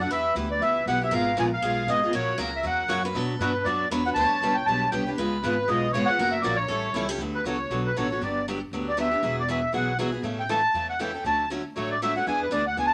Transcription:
Already playing: A4
0.00 A3 D4 F#4 F#5
0.10 E2 E3 B3 E4 G4 B4 E5
0.35 D2 E3 B3 E4 G4
0.51 D5
0.60 C#2 E3 B3 E4 G4 E5
0.86 B1 E3 B3 E4 G4 F#5
1.01 B3 E4 G4 E5
1.11 G#1 C#3 G#3 B3 F4 G#4 A#4 F5
1.37 A#1 C#3 G#3 B3 F4 G#4 G#5
1.53 F5
1.61 B1 C#3 G#3 B3 F4 G#4
1.87 G#1 C#3 G#3 B3 F4 G#4 D#5
2.03 B3 F4 G#4
2.13 A#1 C#3 F#3 A#3 C#4 F#4 C#5
2.38 C#2 C#3 F#3 A#3 C#4 F#4 A#4
2.56 E5
2.63 E2 C#3 F#3 A#3 C#4 F#4 F#5
2.88 F#2 C#3 F#3 A#3 C#4 F#4 C#5
3.03 A#3 C#4 F#4 B4
3.14 B2 F#3 B3 D4 F#4 A4 C#5
3.39 G2 B2 F#3 B3 D4 F#4 B4 C#5
3.64 F#2 B2 F#3 B3 D4 F#4 C#5 D5
3.90 E2 B2 F#3 B3 D4 F#4 B4 C#5
4.06 B3 D4 F#4 C#5 F#5
4.14 D2 B2 G3 B3 D4 G4 C#5 A5
4.18 B4
4.30 muted upright bass stroke
4.40 C#2 B2 G3 B3 D4 G4 B4
4.54 G5
4.66 B1 B2 G3 B3 D4 G4 B4 A5
4.91 C2 B2 G3 B3 D4 G4 B4 G5
5.07 B3 D4 G4 B4
5.18 C#2 C#3 G#3 B3 F4 G#4 B4
5.42 G#1 C#3 G#3 B3 F4 G#4 B4
5.68 B1 C#3 G#3 B3 F4 G#4 D#5
5.92 G#1 C#3 G#3 B3 F4 G#4 C#5
6.06 F4 G#4 F#5
6.10 B3
6.19 F#1 C#3 F#3 A#3 C#4 F#4 A#4
6.31 E5
6.41 A#1 C#3 F#3 A#3 C#4 F#4 D5
6.56 C#5
6.68 A1 E3 G3 C#4 E4 A4
6.94 C#2 E3 G3 C#4 E4 A4
7.09 C#4 E4 G4 A4
7.18 D2 D3 F#3 B3 F#4 A4
7.35 B4
7.44 C#2 D3 F#3 B3 F#4 A4 C#5
7.70 B1 D3 F#3 B3 F#4 A4
7.87 B4
7.96 A1 D3 F#3 B3 F#4 A4 C#5
8.10 B3 F#4 A4
8.21 G1 D3 F#3 B3 D4 G4 D5
8.48 D3 F#3 B3 D4 G4
8.71 D2 D3 F#3 B3 D4 G4
8.88 D5
8.97 D3 F#3 B3 D4 G4 E5
9.11 B3 D4 G4
9.22 E1 E3 F#3 B3 F#4 G#4
9.40 D5
9.48 E3 F#3 B3 F#4 G#4 E5
9.73 B1 E3 F#3 B3 F#4 G#4 F#5
9.99 E3 F#3 B3 F#4 G#4
10.12 B3 F#4 G#4
10.23 A1 C#3 E3 A3 C#4 A4
10.40 G5
10.49 C#3 E3 A3 C#4 A4 A5
10.74 E2 C#3 E3 A3 C#4 A4
10.90 F#5
10.99 C#3 E3 A3 C#4 A4 G5
11.14 A3 C#4 A4
11.24 D2 D3 F#3 A3 C#4 F#4 A5
11.50 D3 F#3 A3 C#4 F#4
11.76 A1 D3 F#3 A3 C#4 F#4 C#5
11.91 D5
12.02 D3 F#3 A3 C#4 F#4 E5
12.16 A3 C#4 F#4 F#5
12.27 E2 E3 B3 D4 G#4 G#5
12.43 B4
12.51 D2 E3 B3 D4 G#4 D5
12.67 F#5
12.77 C#2 E3 B3 D4 G#4 G#5
12.86 A5

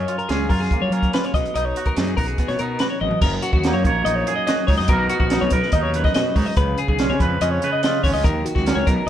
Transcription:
Already playing: F#2 C#4 A#4 C#5
0.08 F4, closed hi-hat
0.18 A#4, closed hi-hat
0.29 C#2 C#4 G#4, snare, closed hi-hat
0.49 F#2 F4 A#4, kick, open hi-hat
0.60 G#4, snare
0.71 A#3, kick, closed hi-hat
0.81 F#3 C#5
0.90 F#3 C#4 A#4, closed hi-hat
1.03 kick, closed hi-hat
1.13 F4 B4, snare, closed hi-hat
1.24 C#5, closed hi-hat
1.34 B1 B2 D#5, kick, snare, closed hi-hat
1.45 closed hi-hat
1.55 B1 D#4 D#5, closed hi-hat
1.65 C#5
1.76 F#4, closed hi-hat
1.85 A#4, kick, closed hi-hat
1.96 F#2 D#4 G#4, snare, closed hi-hat
2.07 closed hi-hat
2.17 B1 F#4 A#4, kick, open hi-hat
2.27 G#4, closed hi-hat
2.38 B3, kick, closed hi-hat
2.48 B2 C#5, snare, closed hi-hat
2.59 B2 D#4 A#4, closed hi-hat
2.79 F#4 B4, snare, closed hi-hat
2.90 C#5
3.01 G#1 B2 D#5, high tom
3.11 floor tom
3.21 F#1 F#2 A#4, kick, crash
3.42 F#4, closed hi-hat
3.53 D#2 F#4, kick
3.64 A#3 D#4, snare, closed hi-hat
3.74 F#2 C#5
3.84 A#1 A#4 C#5, kick, closed hi-hat
4.05 A#1 D#4 D#5, closed hi-hat
4.15 C#5
4.27 F#2 G#4, closed hi-hat
4.36 D#5
4.47 F#4 D#5, snare, closed hi-hat
4.67 C#2 D#4 C#5, kick, open hi-hat
4.78 F#2 D#5, snare
4.88 B1 B2 B3 D#4 A#4, kick, closed hi-hat
4.92 F#4 A#4
5.09 F#4, closed hi-hat
5.20 A#1 F#4, kick
5.30 B3 D#4, snare, closed hi-hat
5.41 B1 C#5
5.50 B1 A#4 B4, kick, closed hi-hat
5.63 snare
5.72 D#2 D#4 D#5, kick, closed hi-hat
5.83 C#5
5.94 F#2 B4, closed hi-hat
6.04 D#5, kick, snare
6.14 B2 F#4 D#5, snare, closed hi-hat
6.36 G#2 D#4 C#5, kick, open hi-hat
6.46 D#5
6.57 C#2 C#3 B4, kick, closed hi-hat
6.78 G#4, closed hi-hat
6.88 B1 G#4, kick
6.99 G#3 C#4, snare, closed hi-hat
7.10 C#3 C#5
7.20 F2 B4, kick, closed hi-hat
7.41 F2 C#4 D#5, closed hi-hat
7.52 C#5
7.62 C#3 B4, closed hi-hat
7.73 D#5
7.83 F4 D#5, snare, closed hi-hat
8.03 G#1 C#4 C#5, kick, open hi-hat
8.14 C#2 D#5
8.24 D#2 D#3 A#4, kick, closed hi-hat
8.45 F#4, closed hi-hat
8.55 C#2 F#4, kick, snare
8.66 F#3 C#4, snare, closed hi-hat
8.75 C#2 C#5
8.87 B1 B2 A#4, kick, closed hi-hat
9.06 D#2

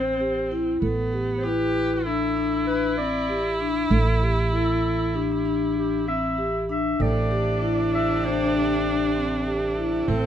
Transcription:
Already playing: A1 C4 C5
0.20 G4
0.51 E4
0.82 A1 B3 A4
1.13 G4
1.37 C5
1.44 E4 G4 B4
2.05 D4 E4 A4
2.37 D4
2.67 B4
2.97 C4 D5
3.29 G4
3.60 D4
3.90 A1 A4
4.22 G4
4.52 E4 A4
5.14 D4 G4
5.45 D4
5.78 G4
6.08 C4 E5
6.38 G4
6.69 D4 E5
6.99 A1 C3 A3 D4 G4 A4 D5
7.31 G4
7.62 E4
7.94 E5
8.23 D4 C5
8.54 D4 G4
9.16 C4
9.47 G4
9.78 E4
10.08 A1 C4 A4

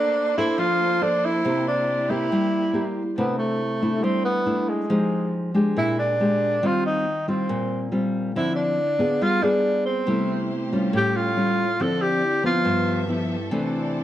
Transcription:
Already playing: A#3 D4 A4 C5
0.38 D4 E4 A4 C5
0.58 F3 F4
1.01 D4 A4 C5
1.25 E4
1.45 C3 A#3 E4 G4
1.68 D4
2.09 A#3 E4 G4
2.32 G3
2.73 A#3 E4 G4
3.18 C3 A3 B3 D4 E4
3.39 A3
3.82 A3 D4 E4
4.04 G3 C4
4.25 B3
4.46 A3 D4 E4
4.69 G#3
4.90 F3 G#3 D#4 G4
5.54 G#3 D4 G4
5.77 A#2 E4
5.99 D4
6.20 G#3 D4 G4
6.62 D#3 G3 C4 F4
6.86 D#4
7.28 G3 C4 F4
7.49 A#2
7.92 G3 C4 F4
8.36 D3 F3 C4 E4
8.56 D4
8.99 B3 F4 G#4
9.22 G3 F4
9.42 B3 D4 F4 G#4
9.86 C4
10.06 C3 G3 A3 E4 G4 C5
10.72 G3 C#4 F4
10.93 A2 G4 C#5
11.17 F4
11.37 G3 C#4 F4
11.79 D3 F3 C4 E4 A4 D5
12.02 G4
12.43 F3 B3 F4
12.64 G2 B3 G4 A4 E5
13.08 F3 B3 E4
13.50 C3 E3 A3 C4 D4 E4 D5

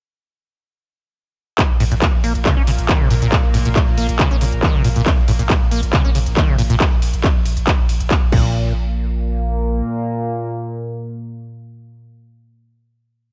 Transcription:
1.58 A#2 A#3, kick, clap, closed hi-hat
1.70 A#1
1.80 A#1 A2, open hi-hat, ride
1.92 A#1 A#2, closed hi-hat
2.02 A#2, kick, clap, closed hi-hat
2.13 A#1
2.24 A#1 A#3, open hi-hat, ride
2.35 A#1, closed hi-hat
2.45 C#3, kick, clap, closed hi-hat
2.57 A#1 C#4
2.67 A#1 C#3, open hi-hat, ride
2.78 A#1, closed hi-hat
2.89 D#3, kick, clap, closed hi-hat
3.00 A#1 C3
3.10 A#1 A#2, open hi-hat, ride
3.22 A#1 A#2, closed hi-hat
3.32 A#2, kick, clap, closed hi-hat
3.44 A#1
3.54 A#1 A2, open hi-hat, ride
3.65 A#1 A#2, closed hi-hat
3.76 A#2, kick, clap, closed hi-hat
3.87 A#1
3.98 A#1 A#3, open hi-hat, ride
4.09 A#1, closed hi-hat
4.19 C#3, kick, clap, closed hi-hat
4.31 A#1 C#4
4.41 A#1 C#3, open hi-hat, ride
4.52 A#1, closed hi-hat
4.63 D#3, kick, clap, closed hi-hat
4.74 A#1 C3
4.84 A#1 A#2, open hi-hat, ride
4.96 A#1 A#2, closed hi-hat
5.06 A#2, kick, clap, closed hi-hat
5.17 A#1
5.28 A#1 A2, open hi-hat, ride
5.39 A#1 A#2, closed hi-hat
5.50 A#2, kick, clap, closed hi-hat
5.61 A#1
5.71 A#1 A#3, open hi-hat, ride
5.83 A#1, closed hi-hat
5.93 C#3, kick, clap, closed hi-hat
6.05 A#1 C#4
6.15 A#1 C#3, open hi-hat, ride
6.26 A#1, closed hi-hat
6.37 D#3, kick, clap, closed hi-hat
6.48 A#1 C3
6.58 A#1 A#2, open hi-hat, ride
6.70 A#1 A#2, closed hi-hat
6.80 kick, clap, closed hi-hat
6.92 A#1
7.02 A#1, open hi-hat, ride
7.13 A#1, closed hi-hat
7.24 kick, clap, closed hi-hat
7.35 A#1
7.45 A#1, open hi-hat, ride
7.57 A#1, closed hi-hat
7.67 kick, clap, closed hi-hat
7.79 A#1
7.89 A#1, open hi-hat, ride
8.00 A#1, closed hi-hat
8.11 kick, clap, closed hi-hat
8.22 A#1
8.32 A#1 A#2 A#3, kick, crash

